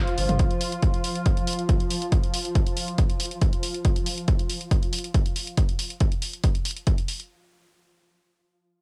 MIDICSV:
0, 0, Header, 1, 4, 480
1, 0, Start_track
1, 0, Tempo, 431655
1, 438, Time_signature, 4, 2, 24, 8
1, 9804, End_track
2, 0, Start_track
2, 0, Title_t, "Synth drone"
2, 0, Program_c, 0, 95
2, 0, Note_on_c, 0, 53, 76
2, 0, Note_on_c, 0, 65, 81
2, 4330, Note_off_c, 0, 65, 0
2, 4331, Note_off_c, 0, 53, 0
2, 9804, End_track
3, 0, Start_track
3, 0, Title_t, "Detuned saw bass"
3, 0, Program_c, 1, 39
3, 198, Note_on_c, 1, 31, 97
3, 303, Note_off_c, 1, 31, 0
3, 325, Note_on_c, 1, 31, 79
3, 418, Note_off_c, 1, 31, 0
3, 9804, End_track
4, 0, Start_track
4, 0, Title_t, "Drums"
4, 84, Note_on_c, 9, 42, 51
4, 195, Note_off_c, 9, 42, 0
4, 197, Note_on_c, 9, 46, 104
4, 308, Note_off_c, 9, 46, 0
4, 324, Note_on_c, 9, 42, 50
4, 324, Note_on_c, 9, 47, 94
4, 435, Note_off_c, 9, 42, 0
4, 435, Note_off_c, 9, 47, 0
4, 437, Note_on_c, 9, 42, 73
4, 439, Note_on_c, 9, 36, 123
4, 548, Note_off_c, 9, 42, 0
4, 550, Note_off_c, 9, 36, 0
4, 563, Note_on_c, 9, 42, 50
4, 675, Note_off_c, 9, 42, 0
4, 676, Note_on_c, 9, 46, 100
4, 787, Note_off_c, 9, 46, 0
4, 804, Note_on_c, 9, 42, 51
4, 916, Note_off_c, 9, 42, 0
4, 917, Note_on_c, 9, 42, 70
4, 919, Note_on_c, 9, 36, 117
4, 1028, Note_off_c, 9, 42, 0
4, 1030, Note_off_c, 9, 36, 0
4, 1044, Note_on_c, 9, 42, 48
4, 1155, Note_off_c, 9, 42, 0
4, 1157, Note_on_c, 9, 46, 101
4, 1268, Note_off_c, 9, 46, 0
4, 1284, Note_on_c, 9, 42, 50
4, 1395, Note_off_c, 9, 42, 0
4, 1397, Note_on_c, 9, 42, 71
4, 1399, Note_on_c, 9, 36, 115
4, 1509, Note_off_c, 9, 42, 0
4, 1510, Note_off_c, 9, 36, 0
4, 1524, Note_on_c, 9, 42, 50
4, 1635, Note_off_c, 9, 42, 0
4, 1638, Note_on_c, 9, 46, 95
4, 1701, Note_on_c, 9, 42, 57
4, 1749, Note_off_c, 9, 46, 0
4, 1765, Note_off_c, 9, 42, 0
4, 1765, Note_on_c, 9, 42, 51
4, 1877, Note_off_c, 9, 42, 0
4, 1879, Note_on_c, 9, 36, 117
4, 1879, Note_on_c, 9, 42, 80
4, 1990, Note_off_c, 9, 42, 0
4, 1991, Note_off_c, 9, 36, 0
4, 2005, Note_on_c, 9, 42, 48
4, 2116, Note_off_c, 9, 42, 0
4, 2118, Note_on_c, 9, 46, 103
4, 2230, Note_off_c, 9, 46, 0
4, 2245, Note_on_c, 9, 42, 49
4, 2357, Note_off_c, 9, 42, 0
4, 2358, Note_on_c, 9, 42, 73
4, 2359, Note_on_c, 9, 36, 123
4, 2469, Note_off_c, 9, 42, 0
4, 2471, Note_off_c, 9, 36, 0
4, 2486, Note_on_c, 9, 42, 50
4, 2597, Note_off_c, 9, 42, 0
4, 2599, Note_on_c, 9, 46, 101
4, 2710, Note_off_c, 9, 46, 0
4, 2726, Note_on_c, 9, 42, 49
4, 2837, Note_off_c, 9, 42, 0
4, 2839, Note_on_c, 9, 42, 71
4, 2840, Note_on_c, 9, 36, 112
4, 2950, Note_off_c, 9, 42, 0
4, 2951, Note_off_c, 9, 36, 0
4, 2965, Note_on_c, 9, 42, 51
4, 3076, Note_off_c, 9, 42, 0
4, 3078, Note_on_c, 9, 46, 96
4, 3189, Note_off_c, 9, 46, 0
4, 3205, Note_on_c, 9, 42, 49
4, 3316, Note_off_c, 9, 42, 0
4, 3318, Note_on_c, 9, 42, 70
4, 3320, Note_on_c, 9, 36, 113
4, 3429, Note_off_c, 9, 42, 0
4, 3431, Note_off_c, 9, 36, 0
4, 3444, Note_on_c, 9, 42, 51
4, 3556, Note_off_c, 9, 42, 0
4, 3558, Note_on_c, 9, 46, 96
4, 3621, Note_on_c, 9, 42, 56
4, 3669, Note_off_c, 9, 46, 0
4, 3685, Note_off_c, 9, 42, 0
4, 3685, Note_on_c, 9, 42, 49
4, 3796, Note_off_c, 9, 42, 0
4, 3799, Note_on_c, 9, 42, 79
4, 3800, Note_on_c, 9, 36, 115
4, 3910, Note_off_c, 9, 42, 0
4, 3911, Note_off_c, 9, 36, 0
4, 3925, Note_on_c, 9, 42, 48
4, 4036, Note_off_c, 9, 42, 0
4, 4037, Note_on_c, 9, 46, 104
4, 4149, Note_off_c, 9, 46, 0
4, 4164, Note_on_c, 9, 42, 49
4, 4275, Note_off_c, 9, 42, 0
4, 4278, Note_on_c, 9, 42, 79
4, 4280, Note_on_c, 9, 36, 119
4, 4389, Note_off_c, 9, 42, 0
4, 4391, Note_off_c, 9, 36, 0
4, 4405, Note_on_c, 9, 42, 55
4, 4516, Note_off_c, 9, 42, 0
4, 4517, Note_on_c, 9, 46, 93
4, 4629, Note_off_c, 9, 46, 0
4, 4645, Note_on_c, 9, 42, 51
4, 4756, Note_off_c, 9, 42, 0
4, 4758, Note_on_c, 9, 42, 69
4, 4760, Note_on_c, 9, 36, 115
4, 4869, Note_off_c, 9, 42, 0
4, 4871, Note_off_c, 9, 36, 0
4, 4885, Note_on_c, 9, 42, 47
4, 4997, Note_off_c, 9, 42, 0
4, 4999, Note_on_c, 9, 46, 96
4, 5110, Note_off_c, 9, 46, 0
4, 5124, Note_on_c, 9, 42, 51
4, 5235, Note_off_c, 9, 42, 0
4, 5239, Note_on_c, 9, 42, 74
4, 5240, Note_on_c, 9, 36, 109
4, 5350, Note_off_c, 9, 42, 0
4, 5351, Note_off_c, 9, 36, 0
4, 5367, Note_on_c, 9, 42, 52
4, 5478, Note_off_c, 9, 42, 0
4, 5478, Note_on_c, 9, 46, 92
4, 5543, Note_on_c, 9, 42, 59
4, 5590, Note_off_c, 9, 46, 0
4, 5606, Note_off_c, 9, 42, 0
4, 5606, Note_on_c, 9, 42, 53
4, 5717, Note_off_c, 9, 42, 0
4, 5719, Note_on_c, 9, 36, 112
4, 5719, Note_on_c, 9, 42, 78
4, 5830, Note_off_c, 9, 42, 0
4, 5831, Note_off_c, 9, 36, 0
4, 5845, Note_on_c, 9, 42, 48
4, 5957, Note_off_c, 9, 42, 0
4, 5958, Note_on_c, 9, 46, 92
4, 6069, Note_off_c, 9, 46, 0
4, 6085, Note_on_c, 9, 42, 50
4, 6196, Note_off_c, 9, 42, 0
4, 6198, Note_on_c, 9, 42, 84
4, 6199, Note_on_c, 9, 36, 117
4, 6309, Note_off_c, 9, 42, 0
4, 6310, Note_off_c, 9, 36, 0
4, 6324, Note_on_c, 9, 42, 54
4, 6436, Note_off_c, 9, 42, 0
4, 6437, Note_on_c, 9, 46, 98
4, 6549, Note_off_c, 9, 46, 0
4, 6564, Note_on_c, 9, 42, 52
4, 6675, Note_off_c, 9, 42, 0
4, 6676, Note_on_c, 9, 42, 76
4, 6679, Note_on_c, 9, 36, 108
4, 6787, Note_off_c, 9, 42, 0
4, 6790, Note_off_c, 9, 36, 0
4, 6803, Note_on_c, 9, 42, 52
4, 6914, Note_off_c, 9, 42, 0
4, 6917, Note_on_c, 9, 46, 98
4, 7028, Note_off_c, 9, 46, 0
4, 7044, Note_on_c, 9, 42, 52
4, 7156, Note_off_c, 9, 42, 0
4, 7157, Note_on_c, 9, 42, 80
4, 7159, Note_on_c, 9, 36, 115
4, 7268, Note_off_c, 9, 42, 0
4, 7270, Note_off_c, 9, 36, 0
4, 7284, Note_on_c, 9, 42, 56
4, 7395, Note_off_c, 9, 42, 0
4, 7397, Note_on_c, 9, 46, 96
4, 7460, Note_on_c, 9, 42, 58
4, 7508, Note_off_c, 9, 46, 0
4, 7523, Note_off_c, 9, 42, 0
4, 7523, Note_on_c, 9, 42, 52
4, 7635, Note_off_c, 9, 42, 0
4, 7637, Note_on_c, 9, 42, 81
4, 7639, Note_on_c, 9, 36, 109
4, 7748, Note_off_c, 9, 42, 0
4, 7750, Note_off_c, 9, 36, 0
4, 7763, Note_on_c, 9, 42, 52
4, 7875, Note_off_c, 9, 42, 0
4, 7876, Note_on_c, 9, 46, 93
4, 7987, Note_off_c, 9, 46, 0
4, 8004, Note_on_c, 9, 42, 49
4, 8115, Note_off_c, 9, 42, 0
4, 9804, End_track
0, 0, End_of_file